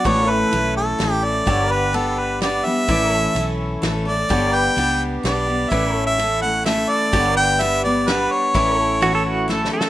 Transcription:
0.04 fingered electric bass A1, steel-string acoustic guitar A2 E3 A3 C#4 A4, pedal steel guitar F#4 B4 D5, harmonica C#5, kick, ride
0.28 pedal steel guitar E4 A4 C#5, harmonica B4
0.52 fingered electric bass B1, steel-string acoustic guitar E3 A3 C#4 A4, ride
0.77 harmonica A4
0.99 fingered electric bass A1, steel-string acoustic guitar E3 A3 C#4 A4, snare, ride
1.13 harmonica G4
1.24 harmonica D5
1.46 fingered electric bass G1, steel-string acoustic guitar G2 D3 G3 B3 D4 G4, pedal steel guitar G4 A4, kick, ride
1.50 pedal steel guitar C#5
1.70 harmonica B4, pedal steel guitar B4 D5
1.93 steel-string acoustic guitar G3 B3 D4 G4, harmonica A4, ride
2.19 harmonica B4
2.40 steel-string acoustic guitar G3 B3 D4 G4, harmonica D5, snare, ride
2.64 steel-string acoustic guitar G3 B3 D4 G4, harmonica E5
2.88 fingered electric bass A1, steel-string acoustic guitar A2 E3 A3 C#4 A4, pedal steel guitar E4 B4 D5, kick, ride
3.11 pedal steel guitar A4 C#5
3.35 fingered electric bass B1, steel-string acoustic guitar E3 A3 C#4 A4, ride
3.82 fingered electric bass A1, steel-string acoustic guitar E3 A3 C#4 A4, snare, ride
4.05 steel-string acoustic guitar A3 C#4 A4, harmonica D5
4.29 fingered electric bass G1, steel-string acoustic guitar G2 D3 G3 B3 D4 G4, pedal steel guitar G4 A4 C#5, kick, ride
4.53 pedal steel guitar B4 D5, harmonica G5
4.76 fingered electric bass C#2, steel-string acoustic guitar G3 B3 D4 G4, ride
5.23 fingered electric bass B1, steel-string acoustic guitar G3 B3 D4 G4, harmonica D5, snare, ride
5.47 steel-string acoustic guitar G3 B3 D4 G4
5.70 fingered electric bass A1, steel-string acoustic guitar A2 E3 A3 C#4 A4, pedal steel guitar E4 B4 D5, harmonica E5, kick, ride
5.94 pedal steel guitar A4 C#5
6.06 harmonica E5
6.18 steel-string acoustic guitar E3 A3 C#4 A4, ride
6.41 steel-string acoustic guitar A3 C#4 A4, harmonica F#5
6.64 steel-string acoustic guitar E3 A3 C#4 A4, harmonica E5, snare, ride
6.89 harmonica D5
7.12 fingered electric bass G1, steel-string acoustic guitar G2 D3 G3 B3 D4 G4, pedal steel guitar G4 A4 C#5, kick, ride
7.36 pedal steel guitar B4 D5, harmonica G5
7.59 steel-string acoustic guitar G3 B3 D4 G4, harmonica E5, ride
7.83 steel-string acoustic guitar G3 B3 D4 G4, harmonica D5
8.07 steel-string acoustic guitar G3 B3 D4 G4, harmonica B4, snare, ride
8.32 harmonica C#5
8.54 fingered electric bass A1, steel-string acoustic guitar A2 E3 A3 C#4 A4, pedal steel guitar E4 B4 D5, kick, ride
8.77 pedal steel guitar A4 C#5
9.01 steel-string acoustic guitar E3 A3 C#4 A4, pedal steel guitar F#4, ride
9.15 pedal steel guitar A4
9.27 pedal steel guitar F#4
9.48 steel-string acoustic guitar E3 A3 C#4 A4, pedal steel guitar A4, snare
9.65 snare
9.71 steel-string acoustic guitar A3 C#4 A4, pedal steel guitar A4
9.81 snare

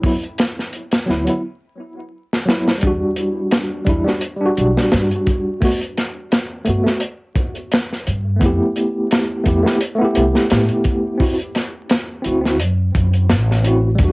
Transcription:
0.01 tine electric piano F#3 B3, kick, open hi-hat
0.06 tine electric piano E4
0.23 closed hi-hat
0.38 snare, closed hi-hat
0.59 snare
0.73 closed hi-hat
0.91 snare, closed hi-hat
1.06 upright bass D2, tine electric piano F#3 B3, snare
1.10 tine electric piano E4
1.25 tine electric piano F#3 B3, closed hi-hat
1.29 tine electric piano E4
2.33 snare
2.46 tine electric piano F#3 B3, snare
2.50 tine electric piano E4
2.68 snare
2.78 tine electric piano G3, closed hi-hat
2.83 upright bass E2, tine electric piano D4, kick
2.87 tine electric piano F#4
3.16 closed hi-hat
3.51 snare, closed hi-hat
3.85 upright bass E2, tine electric piano G3 D4, kick, closed hi-hat
3.89 tine electric piano E4
4.04 tine electric piano G3 D4, snare
4.09 tine electric piano F#4
4.21 closed hi-hat
4.37 tine electric piano G3
4.41 tine electric piano D4
4.46 tine electric piano F#4
4.57 upright bass B1, closed hi-hat
4.77 snare
4.92 upright bass G2, snare, closed hi-hat
5.11 closed hi-hat
5.27 kick, closed hi-hat
5.61 tine electric piano A3 B3, kick, open hi-hat
5.65 tine electric piano F#4
5.81 closed hi-hat
5.97 snare, closed hi-hat
6.32 snare, closed hi-hat
6.65 upright bass G2, tine electric piano A3 B3, closed hi-hat
6.70 tine electric piano F#4
6.84 tine electric piano A3 B3, snare
6.89 tine electric piano F#4
7.00 closed hi-hat
7.35 kick, closed hi-hat
7.55 closed hi-hat
7.71 snare, closed hi-hat
7.92 snare
8.06 upright bass G2, closed hi-hat
8.36 tine electric piano A3 B3
8.41 upright bass F2, tine electric piano E4, kick, closed hi-hat
8.46 tine electric piano G4
8.76 closed hi-hat
9.11 snare, closed hi-hat
9.44 upright bass F2, tine electric piano A3 B3 E4, kick, closed hi-hat
9.48 tine electric piano G4
9.63 tine electric piano A3 B3 E4, snare
9.67 tine electric piano G4
9.81 closed hi-hat
9.95 tine electric piano A3 B3
10.02 tine electric piano E4 G4
10.15 upright bass C2, closed hi-hat
10.35 snare
10.50 upright bass A2, snare, closed hi-hat
10.69 closed hi-hat
10.84 kick, closed hi-hat
11.18 tine electric piano C4 E4, kick, open hi-hat
11.23 tine electric piano F#4
11.39 closed hi-hat
11.55 snare, closed hi-hat
11.90 snare, closed hi-hat
12.22 upright bass D2, tine electric piano C4 E4, closed hi-hat
12.27 tine electric piano F#4
12.41 tine electric piano C4 E4
12.45 tine electric piano F#4, snare
12.60 upright bass F#2, closed hi-hat
12.95 upright bass F#2, kick, closed hi-hat
13.13 closed hi-hat
13.29 upright bass A1, snare, closed hi-hat
13.51 snare
13.62 tine electric piano C4 E4, closed hi-hat
13.67 tine electric piano F#4
13.95 tine electric piano G3, kick, closed hi-hat
14.00 upright bass E2, tine electric piano D4
14.04 tine electric piano F#4

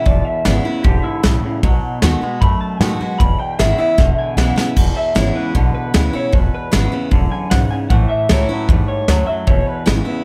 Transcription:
0.06 upright bass E1, steel-string acoustic guitar E2, clean electric guitar E2 B2 D5, kick, open hi-hat
0.25 clean electric guitar E5, muted upright bass stroke
0.44 upright bass G#1, clean electric guitar E2 C#3 D5, steel-string acoustic guitar E3 G#3 B3 E4, snare, open hi-hat
0.64 clean electric guitar E2 C#3 B4, steel-string acoustic guitar B3 E4
0.83 upright bass E1, clean electric guitar E2 D3 G4, steel-string acoustic guitar G#2, kick, open hi-hat
1.03 clean electric guitar E4, muted upright bass stroke
1.23 upright bass B1, clean electric guitar E2 C#3, steel-string acoustic guitar A2, snare, open hi-hat
1.44 clean electric guitar E2 C#3, muted upright bass stroke
1.63 upright bass B1, steel-string acoustic guitar B2, clean electric guitar B2 F#3, kick, open hi-hat
1.83 muted upright bass stroke
2.02 upright bass D#2, clean electric guitar B2 G#3, steel-string acoustic guitar D#3 A3 B3 F#4, snare
2.21 clean electric guitar B2 G#3, steel-string acoustic guitar B3 F#4, muted upright bass stroke
2.41 upright bass F#2, steel-string acoustic guitar F#2, clean electric guitar B2 A3 B5, kick, open hi-hat
2.61 clean electric guitar A5, muted upright bass stroke
2.80 upright bass A2, clean electric guitar B2 G#3 G5, steel-string acoustic guitar D#3 A3 B3 F#4, snare, open hi-hat
3.00 clean electric guitar B2 G#3, steel-string acoustic guitar B3 F#4, muted upright bass stroke
3.19 upright bass E1, clean electric guitar E2 B2 B5, steel-string acoustic guitar E2, kick, open hi-hat
3.40 clean electric guitar G5, muted upright bass stroke
3.59 upright bass G#1, clean electric guitar E2 C#3 E5, steel-string acoustic guitar E3 G#3 B3 E4, snare, open hi-hat
3.78 clean electric guitar E2 C#3 E5, steel-string acoustic guitar B3 E4, muted upright bass stroke
3.98 upright bass E1, clean electric guitar E2 D3, steel-string acoustic guitar B2, kick, snare
4.18 clean electric guitar G#5
4.36 upright bass B1, clean electric guitar E2 C#3 F#5, steel-string acoustic guitar E3 G#3 B3 E4, snare
4.56 clean electric guitar E2 C#3 G#5, steel-string acoustic guitar B3 E4, muted upright bass stroke, snare
4.76 upright bass E1, steel-string acoustic guitar E2, clean electric guitar E2 B2, kick, crash
4.97 clean electric guitar E5
5.15 upright bass G#1, clean electric guitar E2 C#3 C#5, steel-string acoustic guitar E3 G#3 B3 E4, snare
5.35 clean electric guitar E2 C#3 B4
5.55 upright bass B1, clean electric guitar E2 D3, steel-string acoustic guitar B2, kick, open hi-hat
5.75 clean electric guitar B4, muted upright bass stroke
5.94 upright bass D2, clean electric guitar E2 C#3, steel-string acoustic guitar E3 G#3 B3 E4, snare
6.13 clean electric guitar E2 C#3 C#5, steel-string acoustic guitar B3 E4
6.32 upright bass E1, steel-string acoustic guitar E2, clean electric guitar E2 B2 B4, kick, open hi-hat
6.54 clean electric guitar B4, muted upright bass stroke
6.72 upright bass G#1, clean electric guitar E2 C#3, steel-string acoustic guitar E3 G#3 B3 E4, snare, open hi-hat
6.92 clean electric guitar E2 C#3, steel-string acoustic guitar B3 E4, muted upright bass stroke
7.11 upright bass E1, clean electric guitar E2 D3, steel-string acoustic guitar F#2, kick, open hi-hat
7.32 clean electric guitar G#5, muted upright bass stroke
7.50 upright bass B1, clean electric guitar E2 C#3 F#5, steel-string acoustic guitar G#2, snare, open hi-hat
7.71 clean electric guitar E2 C#3 G#5, muted upright bass stroke
7.90 upright bass A1, steel-string acoustic guitar A2, clean electric guitar A2 E3 F#5, kick, open hi-hat
8.09 clean electric guitar E5, muted upright bass stroke
8.29 upright bass C#2, clean electric guitar A2 F#3 C#5, steel-string acoustic guitar E3 A3 C#4 E4, snare
8.49 clean electric guitar A2 F#3 B4, steel-string acoustic guitar C#4 E4, muted upright bass stroke
8.69 upright bass E2, steel-string acoustic guitar G#2, clean electric guitar A2 G3, kick, open hi-hat
8.88 clean electric guitar C#5, muted upright bass stroke
9.08 upright bass D2, steel-string acoustic guitar F#2, clean electric guitar A2 F#3, snare, open hi-hat
9.27 clean electric guitar A2 F#3 E5
9.47 upright bass E1, steel-string acoustic guitar E2, clean electric guitar E2 B2 C#5, kick, open hi-hat
9.67 clean electric guitar B4, muted upright bass stroke
9.86 upright bass G#1, clean electric guitar E2 C#3, steel-string acoustic guitar E3 G#3 B3 E4, snare, open hi-hat
10.05 clean electric guitar E2 C#3, steel-string acoustic guitar B3 E4

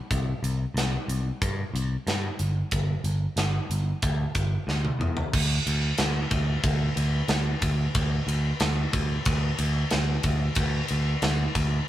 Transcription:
0.11 picked electric bass C2, kick, closed hi-hat
0.43 picked electric bass C2, closed hi-hat
0.74 picked electric bass C2, snare, closed hi-hat
1.08 picked electric bass C2, closed hi-hat
1.42 picked electric bass G2, kick, closed hi-hat
1.74 picked electric bass C2, closed hi-hat
2.07 picked electric bass G2, snare, closed hi-hat
2.39 picked electric bass G1, closed hi-hat
2.71 picked electric bass G1, kick, closed hi-hat
3.04 picked electric bass G1, closed hi-hat
3.36 picked electric bass G1, snare, closed hi-hat
3.70 picked electric bass G1, closed hi-hat
4.02 picked electric bass D2, kick, closed hi-hat
4.35 picked electric bass G1, kick, closed hi-hat
4.67 picked electric bass D2, snare
4.85 high tom
4.99 picked electric bass E2, mid tom
5.17 floor tom
5.33 picked electric bass D2, kick, crash
5.67 picked electric bass D2, ride
5.98 picked electric bass D2, snare, ride
6.31 picked electric bass D2, kick, ride
6.63 picked electric bass D2, kick, ride
6.96 picked electric bass D2, ride
7.28 picked electric bass D2, snare, ride
7.62 picked electric bass D2, kick, ride
7.95 picked electric bass D2, kick, ride
8.27 picked electric bass D2, ride
8.60 picked electric bass D2, snare, ride
8.93 picked electric bass D2, kick, ride
9.25 picked electric bass D2, kick, ride
9.58 picked electric bass D2, ride
9.90 picked electric bass D2, snare, ride
10.23 picked electric bass D2, kick, ride
10.55 picked electric bass D2, kick, ride
10.88 picked electric bass D2, ride
11.22 picked electric bass D2, snare, ride
11.55 picked electric bass D2, kick, ride

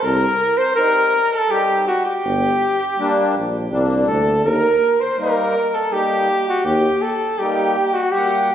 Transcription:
0.01 tuba C2, cornet A#4, violin A#4
0.58 cornet C5, violin C5
0.75 accordion G3 C4 D#4, cornet A#4, violin A#4
1.33 cornet A4, violin A4
1.50 accordion G3 C4 D#4, violin G4, cornet G4
1.87 cornet F#4, violin F#4
2.05 violin G4, cornet G4
2.24 tuba G1
2.97 accordion G3 A#3 D4
3.34 tuba A#1
3.71 tuba C2, accordion G3 A#3 D4
4.08 tuba D2, cornet A4, violin A4
4.44 tuba D#2, cornet A#4, violin A#4
5.00 cornet C5, violin C5
5.13 violin C5
5.18 accordion G3 A#3 D#4, cornet A#4, violin A#4
5.74 cornet A4, violin A4
5.91 accordion G3 A#3 D#4, cornet G4, violin G4
6.49 cornet F#4
6.65 tuba D#2, cornet G4, violin G4
7.02 cornet A4, violin A4
7.38 accordion G3 A#3 D#4, cornet G4, violin G4
7.94 cornet F#4, violin F#4
8.11 accordion G3 A#3 F#5, cornet G4, violin G4

